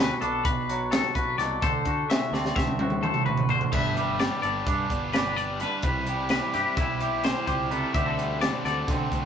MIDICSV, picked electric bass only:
0, 0, Header, 1, 2, 480
1, 0, Start_track
1, 0, Key_signature, 1, "major"
1, 0, Tempo, 468019
1, 1664, Time_signature, 9, 3, 24, 8
1, 9489, End_track
2, 0, Start_track
2, 0, Title_t, "Picked electric bass"
2, 0, Program_c, 0, 34
2, 0, Note_on_c, 0, 38, 88
2, 115, Note_off_c, 0, 38, 0
2, 225, Note_on_c, 0, 35, 89
2, 412, Note_off_c, 0, 35, 0
2, 463, Note_on_c, 0, 35, 89
2, 1029, Note_off_c, 0, 35, 0
2, 1190, Note_on_c, 0, 35, 86
2, 1376, Note_off_c, 0, 35, 0
2, 1413, Note_on_c, 0, 36, 97
2, 1606, Note_off_c, 0, 36, 0
2, 1670, Note_on_c, 0, 38, 105
2, 1856, Note_off_c, 0, 38, 0
2, 1911, Note_on_c, 0, 50, 85
2, 2097, Note_off_c, 0, 50, 0
2, 2377, Note_on_c, 0, 38, 86
2, 2568, Note_off_c, 0, 38, 0
2, 2631, Note_on_c, 0, 38, 97
2, 3194, Note_off_c, 0, 38, 0
2, 3343, Note_on_c, 0, 38, 87
2, 3721, Note_off_c, 0, 38, 0
2, 3824, Note_on_c, 0, 31, 90
2, 4390, Note_off_c, 0, 31, 0
2, 4550, Note_on_c, 0, 31, 92
2, 4737, Note_off_c, 0, 31, 0
2, 4783, Note_on_c, 0, 43, 83
2, 4973, Note_off_c, 0, 43, 0
2, 5028, Note_on_c, 0, 31, 82
2, 5781, Note_off_c, 0, 31, 0
2, 5988, Note_on_c, 0, 36, 87
2, 6552, Note_off_c, 0, 36, 0
2, 6715, Note_on_c, 0, 43, 94
2, 6806, Note_off_c, 0, 43, 0
2, 6949, Note_on_c, 0, 35, 80
2, 7512, Note_off_c, 0, 35, 0
2, 7670, Note_on_c, 0, 37, 85
2, 8044, Note_off_c, 0, 37, 0
2, 8147, Note_on_c, 0, 38, 97
2, 8710, Note_off_c, 0, 38, 0
2, 8866, Note_on_c, 0, 38, 95
2, 9053, Note_off_c, 0, 38, 0
2, 9111, Note_on_c, 0, 50, 81
2, 9295, Note_off_c, 0, 50, 0
2, 9356, Note_on_c, 0, 38, 79
2, 9489, Note_off_c, 0, 38, 0
2, 9489, End_track
0, 0, End_of_file